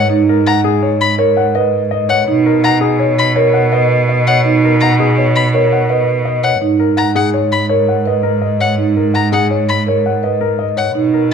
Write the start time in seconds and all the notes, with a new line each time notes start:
Already playing: G#2 C#5
0.10 D#4
0.29 A#4
0.47 F#5 A#5
0.64 G#4
0.83 C#5
1.01 B5
1.18 A#4 C#5
1.37 F#5
1.55 B4 D#5
1.91 D#5
2.09 C#5 F#5
2.28 B2 D#4
2.46 A#4
2.64 F#5 A#5
2.81 G#4
2.99 C#5
3.19 B5
3.36 A#4 C#5
3.54 F#5
3.72 B4 D#5
4.09 D#5
4.27 C#5 F#5
4.45 D#4
4.64 A#4
4.81 F#5 A#5
5.00 G#4
5.18 C#5
5.36 B5
5.53 A#4 C#5
5.73 F#5
5.89 B4 D#5
6.25 D#5
6.44 C#5 F#5
6.62 G#2 D#4
6.80 A#4
6.97 F#5 A#5
7.15 G#4 F#5
7.34 C#5
7.52 B5
7.69 A#4 C#5
7.88 F#5
8.06 B4 D#5
8.23 A#4
8.42 D#5
8.60 C#5 F#5
8.78 D#4
8.97 A#4
9.14 F#5 A#5
9.32 G#4 F#5
9.50 C#5
9.69 B5
9.87 A#4 C#5
10.06 F#5
10.23 B4 D#5
10.41 A#4
10.59 D#5
10.77 C#5 F#5
10.95 B2 D#4
11.14 A#4